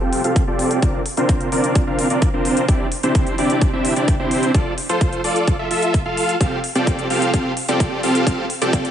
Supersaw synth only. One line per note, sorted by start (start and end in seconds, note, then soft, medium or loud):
0.01 0.22 C4 medium
0.01 0.22 F4 medium
0.01 0.22 G4 medium
0.01 0.21 A4 medium
0.01 0.22 G5 medium
0.24 0.43 C4 medium
0.24 0.43 F4 medium
0.24 0.43 G4 medium
0.24 0.43 A4 medium
0.24 0.43 F5 medium
0.47 0.80 C4 medium
0.47 0.80 F4 medium
0.47 0.80 G4 medium
0.47 0.80 A4 medium
0.47 0.80 D5 medium
1.17 1.49 C4 medium
1.17 1.49 D4 medium
1.17 1.49 F4 medium
1.17 1.49 A#4 medium
1.17 1.49 C5 medium
1.52 1.84 C4 medium
1.52 1.84 D4 medium
1.52 1.84 F4 medium
1.52 1.84 A#4 medium
1.52 1.84 D5 medium
1.87 2.08 C4 medium
1.87 2.08 D4 medium
1.87 2.08 F4 medium
1.87 2.08 A#4 medium
1.87 2.08 F5 medium
2.10 2.29 C4 medium
2.10 2.29 D4 medium
2.10 2.29 F4 medium
2.10 2.29 A#4 medium
2.10 2.29 D5 medium
2.34 2.66 C4 medium
2.34 2.66 D4 medium
2.34 2.66 F4 medium
2.34 2.66 A#4 medium
2.34 2.66 C5 medium
2.69 2.87 C4 medium
2.69 2.87 D4 medium
2.69 2.87 E4 medium
2.69 2.87 G4 medium
2.69 2.87 D5 loud
3.03 3.36 C4 medium
3.03 3.36 D4 medium
3.03 3.36 E4 medium
3.03 3.36 G4 medium
3.03 3.36 C5 medium
3.38 3.70 C4 medium
3.38 3.70 D4 medium
3.38 3.70 E4 medium
3.38 3.70 G4 medium
3.38 3.70 D5 loud
3.73 3.94 C4 medium
3.73 3.94 D4 medium
3.73 3.94 E4 medium
3.73 3.94 G4 medium
3.73 3.94 E5 loud
3.96 4.15 C4 medium
3.96 4.15 D4 medium
3.96 4.15 E4 medium
3.96 4.15 G4 medium
3.96 4.15 D5 medium
4.20 4.52 C4 medium
4.20 4.52 D4 medium
4.20 4.52 E4 medium
4.20 4.52 G4 medium
4.20 4.52 C5 medium
4.89 5.22 F4 medium
4.89 5.22 A4 medium
4.89 5.22 C5 medium
5.24 5.56 F4 medium
5.24 5.56 A4 medium
5.24 5.56 D5 medium
5.59 5.69 F4 medium
5.59 5.69 A4 medium
5.59 5.69 E5 medium
5.71 6.00 F4 medium
5.71 6.00 A4 medium
5.71 6.00 E5 medium
6.06 6.35 F4 medium
6.06 6.35 A4 medium
6.06 6.35 F5 loud
6.41 6.59 C4 medium
6.41 6.59 F4 medium
6.41 6.59 G4 medium
6.41 6.59 A4 medium
6.75 7.08 C4 medium
6.75 7.08 F4 medium
6.75 7.08 G4 medium
6.75 7.08 A4 medium
6.75 7.08 D5 medium
7.10 7.32 C4 medium
7.10 7.32 F4 medium
7.10 7.32 G4 medium
7.10 7.32 A4 medium
7.10 7.32 F5 medium
7.34 7.52 C4 medium
7.68 8.01 C4 medium
7.68 8.01 F4 medium
7.68 8.01 G4 medium
7.68 8.01 A4 medium
7.68 8.01 D5 medium
8.03 8.25 C4 medium
8.03 8.25 F4 medium
8.03 8.25 G4 medium
8.03 8.25 A4 medium
8.03 8.25 F5 medium
8.27 8.45 C4 medium
8.27 8.45 F4 medium
8.27 8.45 G4 medium
8.27 8.45 A4 medium
8.27 8.45 F5 loud
8.62 8.91 C4 medium
8.62 8.91 F4 medium
8.62 8.91 G4 medium
8.62 8.91 A4 medium
8.62 8.91 D5 medium